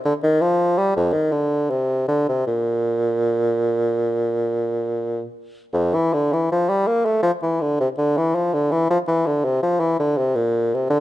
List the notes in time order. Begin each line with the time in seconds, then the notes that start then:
0.05 D3
0.23 D#3
0.41 F3
0.78 G3
0.96 F2
1.13 D#3
1.32 D3
1.70 C3
2.08 D3
2.28 C3
2.47 A#2
5.73 F2
5.94 E3
6.13 D3
6.33 E3
6.52 F3
6.69 G3
6.87 A#3
7.05 A3
7.23 F3
7.43 E3
7.61 D3
7.80 C3
7.98 D3
8.17 E3
8.35 F3
8.54 D3
8.71 E3
8.90 F3
9.07 E3
9.26 D3
9.45 C3
9.63 F3
9.80 E3
9.99 D3
10.18 C3
10.36 A#2
10.74 C3
10.90 D3